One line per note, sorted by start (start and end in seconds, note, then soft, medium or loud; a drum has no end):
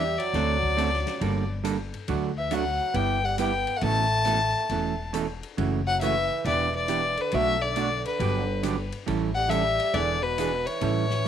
0.00 0.16 E2 medium
0.00 0.20 G3 medium
0.00 0.19 E5 medium
0.18 1.49 F#3 loud
0.18 1.49 D5 loud
0.18 ride medium
0.33 1.03 D2 medium
0.33 0.56 D3 soft
0.33 0.56 A3 medium
0.33 0.56 C4 medium
0.33 0.56 F#4 medium
0.33 0.56 A4 medium
0.33 snare soft
0.33 ride medium
0.63 kick medium
0.77 0.88 D3 medium
0.77 0.89 A3 medium
0.77 0.89 C4 medium
0.77 0.89 F#4 medium
0.77 0.89 A4 medium
0.77 hi-hat pedal soft
0.77 ride medium
0.94 snare soft
1.07 snare soft
1.07 ride soft
1.20 1.91 G1 medium
1.20 1.43 D3 medium
1.20 1.43 G3 medium
1.20 1.43 A#3 medium
1.20 1.43 D4 medium
1.20 1.43 A4 medium
1.20 ride medium
1.64 1.76 D3 medium
1.64 1.76 G3 medium
1.64 1.76 A#3 medium
1.64 1.76 D4 medium
1.64 1.76 A4 medium
1.64 hi-hat pedal medium
1.64 ride medium
1.94 ride soft
2.08 2.78 D2 medium
2.08 2.30 D3 medium
2.08 2.30 F#3 medium
2.08 2.30 A3 medium
2.08 2.31 D4 medium
2.08 2.31 F#4 medium
2.08 ride medium
2.38 2.53 E3 medium
2.38 2.55 E5 medium
2.51 2.63 D3 medium
2.51 2.63 F#3 medium
2.51 2.95 F#3 medium
2.51 2.63 A3 medium
2.51 2.63 D4 medium
2.51 2.64 F#4 medium
2.51 2.97 F#5 medium
2.51 hi-hat pedal medium
2.51 ride medium
2.94 3.64 G1 medium
2.94 3.17 G3 medium
2.94 3.26 B3 medium
2.94 3.17 B3 medium
2.94 3.18 E4 medium
2.94 3.17 G4 medium
2.94 3.26 G5 loud
2.94 ride medium
3.25 3.39 G3 medium
3.25 3.39 F#5 medium
3.38 3.50 G3 medium
3.38 3.51 B3 medium
3.38 3.79 B3 medium
3.38 3.51 E4 medium
3.38 3.51 G4 medium
3.38 3.78 G5 medium
3.38 hi-hat pedal medium
3.38 ride medium
3.67 ride soft
3.76 3.83 A3 medium
3.76 3.83 F#5 medium
3.81 4.52 A1 medium
3.81 4.04 B2 medium
3.81 4.05 E3 medium
3.81 4.05 A3 medium
3.81 5.14 A3 medium
3.81 4.05 C#4 medium
3.81 4.05 A4 medium
3.81 5.13 A5 loud
3.81 ride medium
4.25 4.37 B2 medium
4.25 4.38 E3 medium
4.25 4.38 A3 medium
4.25 4.38 C#4 medium
4.25 4.38 A4 medium
4.25 hi-hat pedal medium
4.25 ride medium
4.69 5.39 E1 medium
4.69 4.92 B2 medium
4.69 4.93 E3 medium
4.69 4.93 A3 medium
4.69 4.93 C#4 medium
4.69 4.93 A4 medium
4.69 ride medium
5.13 5.25 B2 medium
5.13 5.25 E3 medium
5.13 5.26 A3 medium
5.13 5.26 C#4 medium
5.13 5.26 A4 medium
5.13 hi-hat pedal medium
5.13 ride medium
5.43 ride soft
5.57 6.28 F#1 medium
5.57 5.80 C#3 medium
5.57 5.80 E3 medium
5.57 5.80 A3 medium
5.57 5.80 C#4 medium
5.57 5.80 F#4 medium
5.57 ride medium
5.87 6.00 F#3 medium
5.87 6.00 F#5 loud
6.01 6.13 C#3 medium
6.01 6.42 E3 medium
6.01 6.14 E3 medium
6.01 6.13 A3 medium
6.01 6.14 C#4 medium
6.01 6.14 F#4 medium
6.01 6.42 E5 loud
6.01 hi-hat pedal medium
6.01 ride medium
6.45 7.14 E1 medium
6.45 6.67 E3 medium
6.45 6.72 E3 medium
6.45 6.68 B3 medium
6.45 6.68 D4 medium
6.45 6.68 G4 medium
6.45 6.72 D5 medium
6.45 ride medium
6.75 7.20 E3 medium
6.75 7.22 D5 loud
6.88 7.00 E3 medium
6.88 7.00 B3 medium
6.88 7.00 D4 medium
6.88 7.01 G4 medium
6.88 hi-hat pedal medium
6.88 ride medium
7.17 7.35 D3 medium
7.17 7.36 B4 medium
7.17 ride soft
7.32 8.02 B1 medium
7.32 7.55 B2 medium
7.32 7.55 F#3 medium
7.32 7.55 A3 medium
7.32 7.65 A3 medium
7.32 7.55 D4 medium
7.32 7.55 F#4 medium
7.32 7.63 E5 loud
7.32 ride medium
7.62 8.06 D3 medium
7.62 8.05 D5 medium
7.76 7.88 B2 medium
7.76 7.88 F#3 medium
7.76 7.88 A3 medium
7.76 7.88 D4 medium
7.76 7.88 F#4 medium
7.76 hi-hat pedal medium
7.76 ride medium
8.05 8.89 D3 medium
8.05 8.89 B4 medium
8.05 ride soft
8.19 8.89 G1 medium
8.19 8.42 D3 medium
8.19 8.42 F#3 medium
8.19 8.42 B3 medium
8.19 8.43 D4 medium
8.19 8.43 G4 medium
8.19 ride medium
8.63 8.75 D3 medium
8.63 8.75 F#3 medium
8.63 8.75 B3 medium
8.63 8.75 D4 medium
8.63 8.76 G4 medium
8.63 hi-hat pedal medium
8.63 ride medium
8.92 ride soft
9.06 9.77 A1 medium
9.06 9.29 E3 medium
9.06 9.29 G3 medium
9.06 9.29 C#4 medium
9.06 9.30 E4 medium
9.06 9.30 A4 medium
9.06 ride medium
9.35 9.51 G3 medium
9.35 9.51 F#5 medium
9.49 9.61 E3 medium
9.49 9.62 G3 medium
9.49 9.96 G3 medium
9.49 9.62 C#4 medium
9.49 9.62 E4 medium
9.49 9.62 A4 medium
9.49 9.96 E5 loud
9.49 hi-hat pedal medium
9.49 ride medium
9.80 ride soft
9.94 10.64 E1 medium
9.94 10.25 D3 medium
9.94 10.17 E3 medium
9.94 10.17 B3 medium
9.94 10.17 D4 medium
9.94 10.17 G#4 medium
9.94 10.24 D5 loud
9.94 ride medium
10.22 10.69 B2 medium
10.22 10.68 B4 medium
10.38 10.50 E3 medium
10.38 10.50 B3 medium
10.38 10.50 D4 medium
10.38 10.51 G#4 medium
10.38 hi-hat pedal medium
10.38 ride medium
10.67 11.28 E3 medium
10.67 11.28 C#5 medium
10.67 ride soft
10.81 11.28 A1 medium
10.81 11.04 E3 medium
10.81 11.04 G3 medium
10.81 11.04 C#4 medium
10.81 11.05 E4 medium
10.81 11.05 A4 medium
10.81 ride medium
11.10 snare soft